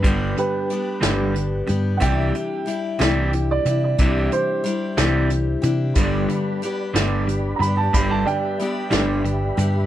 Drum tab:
HH |xxxxxx|xxxxxx|xxxxxx|xxxxxx|
SD |---o--|---o--|---o--|---o--|
BD |o-----|o-----|o-----|o-----|

HH |xxxxxx|
SD |---o--|
BD |o-----|